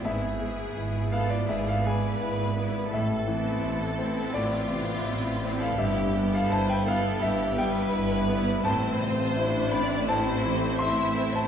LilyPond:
<<
  \new Staff \with { instrumentName = "Violin section" } { \time 4/4 \key a \minor \tempo 4 = 84 gis'4. a'16 f'16 gis'16 a'16 b'4. | a'2 f'4.~ f'16 a'16 | g'8. a'16 c''16 b'16 a'8 g'8 b'4. | c''4. d''8 c''4 e''8. c''16 | }
  \new Staff \with { instrumentName = "Grand piano" } { \time 4/4 \key a \minor e''4. f''16 d''16 e''16 f''16 gis''4. | e''2 d''4.~ d''16 f''16 | e''8. f''16 a''16 g''16 f''8 e''8 g''4. | a''4. b''8 a''4 c'''8. a''16 | }
  \new Staff \with { instrumentName = "Grand piano" } { \time 4/4 \key a \minor gis,8 gis8 e'8 b8 gis,8 gis8 e'8 b8 | a,8 e8 e'8 c'8 a,8 c8 e''8 c'8 | g,8 g8 e'8 b8 g,8 g8 e'8 b8 | a,8 c8 e'8 c'8 a,8 e8 e'8 c'8 | }
  \new Staff \with { instrumentName = "Violin section" } { \time 4/4 \key a \minor e'8 e'4 e'4 e'4 e'8 | r8 e'4 e'4 e'4 e'8 | e'8 e'4 e'4 e'4 e'8 | e'8 f'8 e'4 e'4 e'4 | }
  \new Staff \with { instrumentName = "Viola section" } { \time 4/4 \key a \minor << { b8 b4 b4 b4 b8 | r8 c'4 c'4 c'4 c'8 | b8 b4 b4 b4 b8 | c'4 d'4 c'8 a8 a4 | } \\ { b8 b4 b4 b4 b8 | r8 b4 b4 b4 b8 | b8 b4 b4 b4 b8 | c'2 c'2 | } >> }
  \new Staff \with { instrumentName = "Cello section" } { \clef bass \time 4/4 \key a \minor gis,4 gis,4 gis,4 gis,4 | a,4 a,4 a,4 a,4 | g,4 g,4 g,4 g,4 | a,1 | }
  \new Staff \with { instrumentName = "Double bass section" } { \clef bass \time 4/4 \key a \minor gis,,4 gis,,4 gis,,4 gis,,4 | a,,4 a,,4 a,,4 a,,4 | g,,4 g,,4 g,,4 g,,4 | a,,1 | }
>>